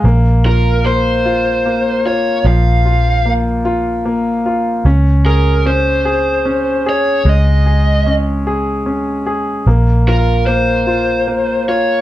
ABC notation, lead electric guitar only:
X:1
M:6/8
L:1/8
Q:3/8=50
K:Bbm
V:1 name="Lead electric guitar"
z B c3 d | f2 z4 | z B c3 d | e2 z4 |
z B c3 d |]